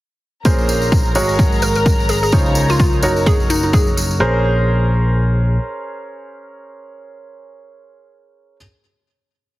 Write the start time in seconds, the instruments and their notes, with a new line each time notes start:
0.45 fingered electric bass A#1, grand piano A#2 C#4 G#4 A#4 C5, violin section A#4 A#5, kick, tambourine
0.58 tambourine
0.69 tambourine
0.82 tambourine
0.92 kick, tambourine
1.05 tambourine
1.15 fingered electric bass G#1, grand piano G#3 F#4 G#4 A#4 C#5, tambourine
1.29 tambourine
1.39 kick, tambourine
1.52 tambourine
1.62 synth pluck A#4, tambourine
1.75 synth pluck A#4, tambourine
1.86 kick, tambourine
2.00 tambourine
2.09 synth pluck G#4, tambourine
2.23 synth pluck G#4, tambourine
2.32 fingered electric bass C#2, grand piano C#3 D#4 F4 C5 C#5, kick, tambourine
2.46 tambourine
2.55 tambourine
2.70 synth pluck F4, tambourine
2.80 synth pluck F4, kick, tambourine
2.93 tambourine
3.03 fingered electric bass F#1, grand piano F#3 D#4 F#4 A#4 C#5, tambourine
3.16 tambourine
3.26 synth pluck G#4, kick, tambourine
3.40 tambourine
3.50 synth pluck D#4, tambourine
3.63 synth pluck D#4, tambourine
3.73 synth pluck G#4, kick, tambourine
3.87 tambourine
3.97 tambourine
4.11 tambourine
4.20 fingered electric bass A#1, grand piano C#4 G#4 A#4 C5